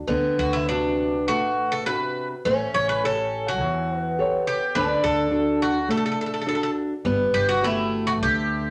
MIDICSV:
0, 0, Header, 1, 5, 480
1, 0, Start_track
1, 0, Tempo, 589971
1, 65, Time_signature, 4, 2, 24, 8
1, 2463, Tempo, 574163
1, 5823, Tempo, 597015
1, 7154, End_track
2, 0, Start_track
2, 0, Title_t, "Bouzouki"
2, 0, Program_c, 0, 25
2, 318, Note_on_c, 0, 66, 68
2, 432, Note_on_c, 0, 64, 63
2, 439, Note_off_c, 0, 66, 0
2, 555, Note_off_c, 0, 64, 0
2, 558, Note_on_c, 0, 62, 72
2, 1038, Note_off_c, 0, 62, 0
2, 1041, Note_on_c, 0, 66, 83
2, 1398, Note_on_c, 0, 69, 81
2, 1406, Note_off_c, 0, 66, 0
2, 1512, Note_off_c, 0, 69, 0
2, 1515, Note_on_c, 0, 71, 81
2, 1846, Note_off_c, 0, 71, 0
2, 2233, Note_on_c, 0, 73, 91
2, 2349, Note_off_c, 0, 73, 0
2, 2352, Note_on_c, 0, 71, 82
2, 2470, Note_off_c, 0, 71, 0
2, 2483, Note_on_c, 0, 69, 87
2, 2844, Note_off_c, 0, 69, 0
2, 2844, Note_on_c, 0, 66, 78
2, 3668, Note_off_c, 0, 66, 0
2, 3671, Note_on_c, 0, 67, 82
2, 3905, Note_on_c, 0, 71, 83
2, 3911, Note_off_c, 0, 67, 0
2, 4140, Note_off_c, 0, 71, 0
2, 4144, Note_on_c, 0, 69, 83
2, 4628, Note_off_c, 0, 69, 0
2, 4632, Note_on_c, 0, 66, 75
2, 4848, Note_off_c, 0, 66, 0
2, 4869, Note_on_c, 0, 69, 72
2, 4916, Note_off_c, 0, 69, 0
2, 4926, Note_on_c, 0, 69, 50
2, 4979, Note_off_c, 0, 69, 0
2, 4996, Note_on_c, 0, 69, 57
2, 5035, Note_off_c, 0, 69, 0
2, 5045, Note_on_c, 0, 69, 46
2, 5099, Note_off_c, 0, 69, 0
2, 5125, Note_on_c, 0, 69, 50
2, 5158, Note_off_c, 0, 69, 0
2, 5168, Note_on_c, 0, 69, 43
2, 5221, Note_off_c, 0, 69, 0
2, 5230, Note_on_c, 0, 69, 48
2, 5283, Note_off_c, 0, 69, 0
2, 5296, Note_on_c, 0, 69, 44
2, 5344, Note_off_c, 0, 69, 0
2, 5354, Note_on_c, 0, 69, 55
2, 5399, Note_off_c, 0, 69, 0
2, 5409, Note_on_c, 0, 69, 46
2, 5464, Note_off_c, 0, 69, 0
2, 5476, Note_on_c, 0, 69, 56
2, 5528, Note_off_c, 0, 69, 0
2, 6059, Note_on_c, 0, 67, 82
2, 6174, Note_off_c, 0, 67, 0
2, 6177, Note_on_c, 0, 66, 81
2, 6297, Note_off_c, 0, 66, 0
2, 6303, Note_on_c, 0, 64, 81
2, 6632, Note_off_c, 0, 64, 0
2, 6645, Note_on_c, 0, 66, 78
2, 6685, Note_off_c, 0, 66, 0
2, 6772, Note_on_c, 0, 67, 78
2, 7154, Note_off_c, 0, 67, 0
2, 7154, End_track
3, 0, Start_track
3, 0, Title_t, "Nylon-string guitar"
3, 0, Program_c, 1, 24
3, 74, Note_on_c, 1, 50, 64
3, 542, Note_off_c, 1, 50, 0
3, 557, Note_on_c, 1, 48, 44
3, 562, Note_on_c, 1, 62, 41
3, 565, Note_on_c, 1, 66, 48
3, 940, Note_off_c, 1, 48, 0
3, 943, Note_off_c, 1, 62, 0
3, 946, Note_off_c, 1, 66, 0
3, 1046, Note_on_c, 1, 57, 62
3, 1503, Note_off_c, 1, 57, 0
3, 1514, Note_on_c, 1, 48, 44
3, 1518, Note_on_c, 1, 62, 44
3, 1520, Note_on_c, 1, 66, 52
3, 1896, Note_off_c, 1, 48, 0
3, 1897, Note_off_c, 1, 62, 0
3, 1899, Note_off_c, 1, 66, 0
3, 1999, Note_on_c, 1, 57, 66
3, 2454, Note_off_c, 1, 57, 0
3, 2468, Note_on_c, 1, 67, 45
3, 2474, Note_on_c, 1, 69, 45
3, 2476, Note_on_c, 1, 73, 54
3, 2852, Note_off_c, 1, 67, 0
3, 2854, Note_off_c, 1, 69, 0
3, 2856, Note_off_c, 1, 73, 0
3, 2944, Note_on_c, 1, 52, 62
3, 3412, Note_off_c, 1, 52, 0
3, 3432, Note_on_c, 1, 67, 45
3, 3434, Note_on_c, 1, 69, 45
3, 3441, Note_on_c, 1, 73, 55
3, 3809, Note_off_c, 1, 67, 0
3, 3810, Note_off_c, 1, 69, 0
3, 3815, Note_off_c, 1, 73, 0
3, 3910, Note_on_c, 1, 50, 69
3, 4365, Note_off_c, 1, 50, 0
3, 4369, Note_on_c, 1, 62, 47
3, 4374, Note_on_c, 1, 66, 45
3, 4378, Note_on_c, 1, 69, 54
3, 4757, Note_off_c, 1, 62, 0
3, 4758, Note_off_c, 1, 66, 0
3, 4759, Note_off_c, 1, 69, 0
3, 4852, Note_on_c, 1, 57, 61
3, 5323, Note_off_c, 1, 57, 0
3, 5334, Note_on_c, 1, 62, 46
3, 5337, Note_on_c, 1, 66, 42
3, 5343, Note_on_c, 1, 69, 52
3, 5723, Note_off_c, 1, 62, 0
3, 5725, Note_off_c, 1, 66, 0
3, 5727, Note_off_c, 1, 69, 0
3, 5825, Note_on_c, 1, 55, 64
3, 6279, Note_off_c, 1, 55, 0
3, 6287, Note_on_c, 1, 66, 45
3, 6292, Note_on_c, 1, 67, 40
3, 6294, Note_on_c, 1, 71, 51
3, 6674, Note_off_c, 1, 66, 0
3, 6674, Note_off_c, 1, 67, 0
3, 6677, Note_off_c, 1, 71, 0
3, 6776, Note_on_c, 1, 50, 56
3, 7154, Note_off_c, 1, 50, 0
3, 7154, End_track
4, 0, Start_track
4, 0, Title_t, "Twelve-string acoustic guitar"
4, 0, Program_c, 2, 25
4, 61, Note_on_c, 2, 59, 80
4, 1995, Note_on_c, 2, 61, 89
4, 2045, Note_off_c, 2, 59, 0
4, 3253, Note_off_c, 2, 61, 0
4, 3253, Note_on_c, 2, 59, 89
4, 3907, Note_on_c, 2, 62, 96
4, 3961, Note_off_c, 2, 59, 0
4, 5792, Note_off_c, 2, 62, 0
4, 5826, Note_on_c, 2, 59, 82
4, 6295, Note_off_c, 2, 59, 0
4, 6298, Note_on_c, 2, 57, 74
4, 7154, Note_off_c, 2, 57, 0
4, 7154, End_track
5, 0, Start_track
5, 0, Title_t, "Upright bass"
5, 0, Program_c, 3, 32
5, 64, Note_on_c, 3, 38, 87
5, 223, Note_off_c, 3, 38, 0
5, 309, Note_on_c, 3, 38, 80
5, 1036, Note_off_c, 3, 38, 0
5, 1036, Note_on_c, 3, 33, 84
5, 1657, Note_off_c, 3, 33, 0
5, 1994, Note_on_c, 3, 33, 84
5, 2148, Note_off_c, 3, 33, 0
5, 2229, Note_on_c, 3, 33, 87
5, 2953, Note_off_c, 3, 33, 0
5, 2953, Note_on_c, 3, 40, 90
5, 3572, Note_off_c, 3, 40, 0
5, 3904, Note_on_c, 3, 38, 91
5, 4057, Note_off_c, 3, 38, 0
5, 4140, Note_on_c, 3, 38, 86
5, 4858, Note_off_c, 3, 38, 0
5, 4858, Note_on_c, 3, 33, 92
5, 5486, Note_off_c, 3, 33, 0
5, 5823, Note_on_c, 3, 31, 90
5, 5975, Note_off_c, 3, 31, 0
5, 6056, Note_on_c, 3, 31, 83
5, 6775, Note_off_c, 3, 31, 0
5, 6775, Note_on_c, 3, 38, 84
5, 7154, Note_off_c, 3, 38, 0
5, 7154, End_track
0, 0, End_of_file